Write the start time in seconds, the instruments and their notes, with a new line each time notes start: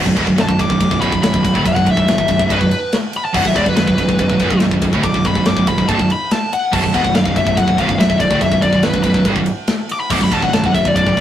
0.05 picked electric bass B0, distorted electric guitar B1 F#2, kick
0.15 picked electric bass E1, distorted electric guitar E2 B2, kick, ride
0.25 picked electric bass B0, distorted electric guitar B1 F#2, kick
0.36 picked electric bass B0, distorted electric guitar B1 F#2, snare, ride
0.41 lead electric guitar A5
0.47 picked electric bass B0, distorted electric guitar B1 F#2, kick
0.58 picked electric bass B0, distorted electric guitar B1 F#2, lead electric guitar D6, kick, ride
0.70 picked electric bass B0, distorted electric guitar B1 F#2, kick
0.80 picked electric bass B0, distorted electric guitar B1 F#2, kick, ride
0.90 picked electric bass B0, distorted electric guitar B1 F#2, kick
1.01 picked electric bass B0, distorted electric guitar B1 F#2, lead electric guitar B5, kick, ride
1.12 picked electric bass B0, distorted electric guitar B1 F#2, kick
1.21 picked electric bass B0, distorted electric guitar B1 F#2, lead electric guitar B5, snare, ride
1.33 picked electric bass B0, distorted electric guitar B1 F#2, kick
1.44 picked electric bass B0, distorted electric guitar B1 F#2, kick, ride
1.54 picked electric bass D1, distorted electric guitar D2 A2, kick
1.66 picked electric bass B0, distorted electric guitar B1 F#2, lead electric guitar F#5, kick, ride
1.76 picked electric bass B0, distorted electric guitar B1 F#2, kick
1.86 picked electric bass B0, distorted electric guitar B1 F#2, kick, ride
1.91 lead electric guitar E5
1.96 picked electric bass B0, distorted electric guitar B1 F#2, kick
2.07 picked electric bass B0, distorted electric guitar B1 F#2, snare, ride
2.18 picked electric bass B0, distorted electric guitar B1 F#2, kick
2.28 picked electric bass B0, distorted electric guitar B1 F#2, kick, ride
2.39 picked electric bass B0, distorted electric guitar B1 F#2, kick
2.50 picked electric bass C1, distorted electric guitar C2 G2, lead electric guitar B4, kick, ride
2.60 picked electric bass B0, distorted electric guitar B1 F#2, kick
2.71 ride
2.93 snare, ride
3.13 lead electric guitar B5, ride
3.25 lead electric guitar A5
3.34 picked electric bass B0, distorted electric guitar B1 F#2, lead electric guitar F#5, kick, crash
3.45 picked electric bass B0, distorted electric guitar B1 F#2, lead electric guitar E5, kick
3.56 picked electric bass E1, distorted electric guitar E2 B2, lead electric guitar D5, kick, ride
3.66 picked electric bass B0, distorted electric guitar B1 F#2, lead electric guitar B4, kick
3.76 picked electric bass B0, distorted electric guitar B1 F#2, lead electric guitar B4, snare, ride
3.86 picked electric bass B0, distorted electric guitar B1 F#2, kick
3.97 picked electric bass B0, distorted electric guitar B1 F#2, kick, ride
4.08 picked electric bass B0, distorted electric guitar B1 F#2, kick
4.18 picked electric bass B0, distorted electric guitar B1 F#2, kick, ride
4.29 picked electric bass B0, distorted electric guitar B1 F#2, kick
4.39 picked electric bass B0, distorted electric guitar B1 F#2, kick, ride
4.49 picked electric bass B0, distorted electric guitar B1 F#2, kick
4.60 picked electric bass B0, distorted electric guitar B1 F#2, snare, ride
4.71 picked electric bass B0, distorted electric guitar B1 F#2, kick
4.82 picked electric bass B0, distorted electric guitar B1 F#2, kick, ride
4.92 picked electric bass D1, distorted electric guitar D2 A2, kick
5.03 picked electric bass B0, distorted electric guitar B1 F#2, lead electric guitar D6, kick, ride
5.14 picked electric bass B0, distorted electric guitar B1 F#2, kick
5.25 picked electric bass B0, distorted electric guitar B1 F#2, lead electric guitar B5, kick, ride
5.35 picked electric bass B0, distorted electric guitar B1 F#2, kick
5.45 picked electric bass B0, distorted electric guitar B1 F#2, lead electric guitar D6, snare, ride
5.57 picked electric bass B0, distorted electric guitar B1 F#2, kick
5.67 picked electric bass B0, distorted electric guitar B1 F#2, lead electric guitar B5, kick, ride
5.78 picked electric bass B0, distorted electric guitar B1 F#2, kick
5.88 picked electric bass C1, distorted electric guitar C2 G2, lead electric guitar A5, kick, ride
5.99 picked electric bass B0, distorted electric guitar B1 F#2, kick
6.10 lead electric guitar B5, ride
6.31 lead electric guitar A5, snare, ride
6.53 lead electric guitar F#5, ride
6.72 picked electric bass B0, distorted electric guitar B1 F#2, lead electric guitar A5, kick, crash
6.83 picked electric bass B0, distorted electric guitar B1 F#2, kick
6.93 picked electric bass E1, distorted electric guitar E2 B2, lead electric guitar F#5, kick, ride
7.03 picked electric bass B0, distorted electric guitar B1 F#2, kick
7.14 picked electric bass B0, distorted electric guitar B1 F#2, lead electric guitar F5, snare, ride
7.24 picked electric bass B0, distorted electric guitar B1 F#2, kick
7.35 picked electric bass B0, distorted electric guitar B1 F#2, lead electric guitar E5, kick, ride
7.45 picked electric bass B0, distorted electric guitar B1 F#2, kick
7.56 picked electric bass B0, distorted electric guitar B1 F#2, lead electric guitar F#5, kick, ride
7.66 picked electric bass B0, distorted electric guitar B1 F#2, kick
7.77 picked electric bass B0, distorted electric guitar B1 F#2, lead electric guitar F5, kick, ride
7.87 picked electric bass B0, distorted electric guitar B1 F#2, kick
7.98 picked electric bass B0, distorted electric guitar B1 F#2, lead electric guitar E5, snare, ride
8.09 picked electric bass B0, distorted electric guitar B1 F#2, kick
8.19 picked electric bass B0, distorted electric guitar B1 F#2, lead electric guitar D5, kick, ride
8.30 picked electric bass D1, distorted electric guitar D2 A2, kick
8.41 picked electric bass B0, distorted electric guitar B1 F#2, lead electric guitar E5, kick, ride
8.51 picked electric bass B0, distorted electric guitar B1 F#2, kick
8.62 picked electric bass B0, distorted electric guitar B1 F#2, lead electric guitar D5, kick, ride
8.72 picked electric bass B0, distorted electric guitar B1 F#2, kick
8.82 picked electric bass B0, distorted electric guitar B1 F#2, lead electric guitar B4, snare, ride
8.93 picked electric bass B0, distorted electric guitar B1 F#2, kick
9.03 picked electric bass B0, distorted electric guitar B1 F#2, lead electric guitar B4, kick, ride
9.14 picked electric bass B0, distorted electric guitar B1 F#2, kick
9.25 picked electric bass C1, distorted electric guitar C2 G2, kick, ride
9.36 picked electric bass B0, distorted electric guitar B1 F#2, kick
9.46 ride
9.67 snare, ride
9.89 lead electric guitar D6, ride
10.00 lead electric guitar B5
10.10 picked electric bass B0, distorted electric guitar B1 F#2, lead electric guitar D6, kick, crash
10.21 picked electric bass B0, distorted electric guitar B1 F#2, lead electric guitar B5, kick
10.31 picked electric bass E1, distorted electric guitar E2 B2, lead electric guitar A5, kick, ride
10.42 picked electric bass B0, distorted electric guitar B1 F#2, lead electric guitar F#5, kick
10.52 picked electric bass B0, distorted electric guitar B1 F#2, lead electric guitar A5, snare, ride
10.64 picked electric bass B0, distorted electric guitar B1 F#2, lead electric guitar F#5, kick
10.74 picked electric bass B0, distorted electric guitar B1 F#2, lead electric guitar E5, kick, ride
10.85 picked electric bass B0, distorted electric guitar B1 F#2, lead electric guitar D5, kick
10.95 picked electric bass B0, distorted electric guitar B1 F#2, lead electric guitar D5, kick, ride
11.06 picked electric bass B0, distorted electric guitar B1 F#2, kick
11.17 picked electric bass B0, distorted electric guitar B1 F#2, kick